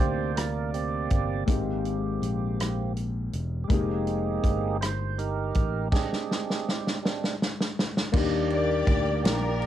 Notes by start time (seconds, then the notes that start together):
Already playing: C3 A#3 C4 D4 D#4 G4 A#4 C5 D5
0.00 D2
0.36 A#4, cross-stick, closed hi-hat
0.74 A#3 C4 G4, closed hi-hat
1.10 G1, kick, closed hi-hat
1.45 G#1 G#2 G#3 A#3 C4 G4, kick, closed hi-hat
1.50 G4
1.85 closed hi-hat
2.22 A#1, closed hi-hat
2.60 cross-stick, closed hi-hat
2.97 closed hi-hat
3.33 E1, closed hi-hat
3.64 G#3 G4
3.69 F1 G#3 A#3 C4 D#4 G4 G#4, kick, closed hi-hat
4.07 closed hi-hat
4.44 G1, kick, closed hi-hat
4.81 C5, cross-stick, closed hi-hat
5.18 D#4 G4 A#4, closed hi-hat
5.54 A1, kick, closed hi-hat
5.91 G#3 C4 D4 G4 G#4, kick, snare, crash
6.13 snare
6.31 snare
6.50 snare
6.69 snare
6.87 snare
7.02 G3 G#3 C4 D4, snare
7.24 snare
7.42 snare
7.60 snare
7.79 snare
7.97 snare
8.12 D#2 G3 A#3 D4 D#4 F4 D5, kick, crash
8.16 G4
8.50 G4 A#4 D5, ride
8.87 D2, kick, ride
9.24 A#1 D4 G4 A#4, snare, ride
9.62 ride